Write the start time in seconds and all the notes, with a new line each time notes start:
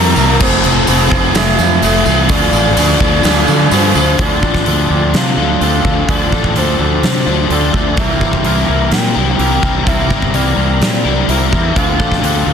Already playing: F2 C3 E3 G3 A#3 C4 E4 G4 A#4 A#5
0.16 C2 C3 E3 G3 A#3 C4 E4 A#4, tambourine
0.40 F1 F3 A3 C4 F4 A4 C5, kick, crash
0.64 F1 C4 F4 A4, tambourine
0.87 F1 F3 A3 C4 F4 A4, open hi-hat, tambourine
1.11 F1 F3 A3 C4 F4 A4, kick, tambourine
1.34 F1 F3 A3 C4 F4 A4 E5, snare, open hi-hat, tambourine
1.59 F2, tambourine
1.81 F1 F3 A3 C4 F4 A4, open hi-hat, tambourine
2.05 C2 E3 F3 A3 C4 E4 F4 A4, tambourine
2.29 D2 D3 F3 A3 C4 D4 F4 A4 D5, kick, open hi-hat, tambourine
2.53 A1 F3 C4 D4 F4 A4, tambourine
2.76 D2 D3 F3 A3 C4 D4 F4 A4, open hi-hat, tambourine
3.00 D2 D3 A3 C4 D4 F4 A4, kick, tambourine
3.23 D2 D3 F3 A3 C4 D4 F4 A4, snare, open hi-hat, tambourine
3.47 D3 F3, tambourine
3.70 G2 D3 F3 A3 C4 D4 F4 A4 C5, open hi-hat, tambourine
3.94 D2 D3 F3 A3 C4 D4 F4 A4 C5, tambourine
4.18 D2 D3 F3 C4 D4 F4 A4 D5, kick, open hi-hat
4.42 A1 D4 F4 A4, kick
4.54 kick, snare
4.65 D2 D3 F3 C4 D4 F4, open hi-hat
4.69 A4
4.89 D2 F3 C4 D4 A4 D5
5.13 C3 A3 F5, snare, open hi-hat
5.37 D2 C4 D4 F4 A4
5.60 D2 D3 F3 A3 C4 D4 F4 F5, open hi-hat
5.64 A4
5.84 D2 F3 C4 D4 F4 A4, kick
6.07 D2 D3 F3 C4 D4 F4 A4 D5, kick, open hi-hat
6.32 A1 D4 F4 A4, kick
6.44 kick
6.55 D2 D3 F3 C4 D4 F4 A4 C5, open hi-hat
6.79 D2 F3 C4 D4 A4
7.03 C3 A3, snare, open hi-hat
7.26 D2 C4 D4 F4 A4
7.50 D2 D3 F3 A3 C4 D4 F4 A4 D5, open hi-hat
7.73 D2 F3 C4 D4 F4 A4 D5, kick
7.96 C2 C3 E3 G3 A#3 C4 E4 A#4 E5, kick, open hi-hat
8.20 G1 G3 C4 E4 A#4, kick
8.33 kick
8.44 C2 E3 G3 A#3 C4 E4 A#4, open hi-hat
8.67 C2 A#3 E4 A#4 E5
8.91 A#2 C4 G5, snare, open hi-hat
9.15 C2 G3 C4 E4 G4 A#4
9.38 C2 G3 A#3 C4 E4 A#4 G5, open hi-hat
9.61 C2 E3 G3 A#3 C4 E4 A#4, kick
9.85 C2 C3 E3 G3 A#3 C4 E4 A#4 E5, kick, open hi-hat
10.09 G1 G3 C4 E4 A#4, kick
10.22 kick
10.33 C2 E3 G3 A#3 C4 E4 A#4 D5, open hi-hat
10.57 C2 A#3 E4 A#4
10.81 A#2 C4 D5, snare, open hi-hat
11.04 C2 G3 C4 E4 G4 A#4
11.28 C2 G3 A#3 C4 E4 A#4 E5, open hi-hat
11.51 E2 E3 G3 A#3 C4 E4 A#4 E5, kick
11.75 D2 D3 F3 A3 C4 D4 F4 A4 F5, kick, open hi-hat
11.98 A1 D4 F4 A4, kick
12.12 kick, snare
12.22 D2 D3 F3 A3 C4 D4 F4 A4, open hi-hat
12.46 D2 A3 C4 D4 A4 F5